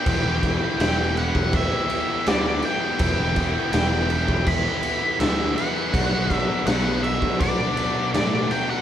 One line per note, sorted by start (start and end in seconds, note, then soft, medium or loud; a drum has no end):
0.00 0.80 G5 loud
0.06 0.23 E1 medium
0.06 0.42 E3 loud
0.06 0.28 B3 loud
0.06 0.26 E4 loud
0.06 0.24 G4 loud
0.06 kick loud
0.06 crash medium
0.24 0.58 E1 medium
0.24 0.45 E4 medium
0.24 0.46 G4 medium
0.28 0.44 B3 medium
0.43 0.78 E3 medium
0.43 0.79 B3 medium
0.43 0.81 E4 medium
0.43 0.81 G4 medium
0.43 kick medium
0.43 crash medium
0.60 0.79 B3 medium
0.60 0.79 E4 medium
0.60 0.80 G4 medium
0.78 1.30 E1 loud
0.78 1.16 E3 loud
0.78 1.16 B3 medium
0.78 1.16 E4 medium
0.78 1.17 G4 loud
0.78 1.17 G5 medium
0.78 snare loud
0.78 crash medium
1.15 1.70 E3 medium
1.15 1.36 B3 medium
1.15 1.34 E4 medium
1.15 1.32 G4 medium
1.15 1.55 F#5 loud
1.15 muted distorted electric guitar stroke soft
1.15 crash medium
1.34 1.69 E1 medium
1.34 1.74 B3 medium
1.34 1.71 E4 medium
1.34 1.69 G4 medium
1.34 kick medium
1.53 2.30 E5 loud
1.53 kick loud
1.53 crash medium
1.70 1.90 B3 medium
1.70 1.90 E4 medium
1.70 1.90 G4 medium
1.89 2.23 E3 medium
1.89 2.26 B3 medium
1.89 2.26 E4 medium
1.89 2.26 G4 medium
1.89 crash medium
2.07 2.27 B3 medium
2.07 2.27 E4 medium
2.07 2.28 G4 medium
2.25 2.60 D2 medium
2.25 2.61 E3 medium
2.25 2.46 B3 loud
2.25 2.44 E4 loud
2.25 2.42 G4 loud
2.25 2.65 D5 medium
2.25 snare loud
2.25 crash medium
2.43 2.63 B3 medium
2.43 2.63 E4 medium
2.43 2.64 G4 medium
2.62 2.98 E3 medium
2.62 2.83 B3 medium
2.62 2.81 E4 medium
2.62 2.80 G4 medium
2.62 3.71 G5 loud
2.62 crash medium
2.81 3.00 B3 medium
2.81 3.00 E4 medium
2.81 3.00 G4 medium
2.99 3.16 E1 loud
2.99 3.34 E3 loud
2.99 3.20 B3 loud
2.99 3.18 E4 loud
2.99 3.16 G4 loud
2.99 kick loud
2.99 crash medium
3.17 3.52 E1 medium
3.17 3.36 B3 medium
3.17 3.37 E4 medium
3.17 3.38 G4 medium
3.36 3.70 E3 medium
3.36 3.73 B3 medium
3.36 3.73 E4 medium
3.36 3.74 G4 medium
3.36 kick medium
3.36 crash medium
3.55 3.73 B3 medium
3.55 3.74 E4 medium
3.55 3.75 G4 medium
3.72 4.24 E1 loud
3.72 4.09 E3 medium
3.72 4.10 B3 loud
3.72 4.10 E4 loud
3.72 4.10 G4 loud
3.72 4.48 G5 loud
3.72 snare loud
3.72 crash medium
4.09 4.64 E3 medium
4.09 4.30 B3 medium
4.09 4.28 E4 medium
4.09 4.26 G4 medium
4.09 muted distorted electric guitar stroke soft
4.09 crash medium
4.28 4.62 E1 medium
4.28 4.65 E4 medium
4.28 4.64 G4 medium
4.28 kick medium
4.32 4.68 B3 medium
4.47 5.23 B5 loud
4.47 kick loud
4.47 crash medium
4.65 4.85 B3 medium
4.65 4.85 E4 medium
4.65 4.86 G4 medium
4.83 5.17 E3 medium
4.83 5.19 B3 medium
4.83 5.20 E4 medium
4.83 crash medium
4.87 5.21 G4 medium
5.00 5.21 B3 medium
5.00 5.21 E4 medium
5.00 5.22 G4 medium
5.19 5.54 D2 medium
5.19 5.54 E3 loud
5.19 5.42 B3 loud
5.19 5.39 E4 loud
5.19 5.37 G4 loud
5.19 5.54 E5 loud
5.19 snare loud
5.19 crash medium
5.38 5.57 E4 medium
5.38 5.58 G4 medium
5.42 5.57 B3 medium
5.55 5.91 E3 medium
5.55 5.78 B3 medium
5.55 5.76 E4 medium
5.55 5.74 G4 medium
5.55 6.35 F#5 loud
5.55 crash medium
5.75 5.94 B3 medium
5.75 5.92 E4 medium
5.75 5.91 G4 medium
5.92 6.10 B1 medium
5.92 6.48 B2 medium
5.92 6.28 F#3 loud
5.92 6.13 B3 loud
5.92 6.11 D4 loud
5.92 kick loud
5.92 crash medium
5.97 6.09 F#4 loud
6.10 6.45 B1 loud
6.10 6.30 D4 medium
6.10 6.31 F#4 medium
6.14 6.29 B3 medium
6.30 6.66 F#3 medium
6.30 6.67 B3 medium
6.30 6.67 D4 medium
6.30 6.69 F#4 medium
6.30 kick medium
6.30 crash medium
6.35 6.66 E5 loud
6.49 6.67 B3 medium
6.49 6.68 D4 medium
6.49 6.69 F#4 medium
6.66 7.18 B1 loud
6.66 7.40 B2 medium
6.66 7.03 F#3 medium
6.66 7.03 B3 medium
6.66 7.04 D4 medium
6.66 7.04 F#4 loud
6.66 7.03 F#5 loud
6.66 snare loud
6.66 crash medium
7.03 7.59 F#3 medium
7.03 7.24 B3 medium
7.03 7.23 D4 medium
7.03 7.21 F#4 medium
7.03 7.41 E5 loud
7.03 muted distorted electric guitar stroke soft
7.03 crash medium
7.21 7.56 B1 medium
7.21 7.61 B3 medium
7.21 7.60 D4 medium
7.21 7.58 F#4 medium
7.21 kick medium
7.39 8.09 D5 medium
7.39 kick loud
7.39 crash medium
7.60 7.77 B3 medium
7.60 7.77 D4 medium
7.60 7.79 F#4 medium
7.77 8.12 F#3 medium
7.77 8.13 B3 medium
7.77 8.14 D4 medium
7.77 8.15 F#4 medium
7.77 crash medium
7.95 8.14 B3 medium
7.95 8.15 D4 medium
7.95 8.16 F#4 medium
8.12 8.48 A2 medium
8.12 8.68 B2 medium
8.12 8.47 F#3 loud
8.12 8.34 B3 loud
8.12 8.32 D4 loud
8.12 8.52 D5 medium
8.12 snare loud
8.12 crash medium
8.16 8.30 F#4 loud
8.31 8.50 B3 medium
8.31 8.50 D4 medium
8.31 8.51 F#4 medium
8.49 8.82 F#3 medium
8.49 8.70 B3 medium
8.49 8.68 D4 medium
8.49 8.65 F#4 medium
8.49 8.70 G5 loud
8.49 crash medium
8.67 8.82 D4 medium
8.67 8.82 F#4 medium
8.67 8.82 F#5 medium
8.71 8.82 B3 medium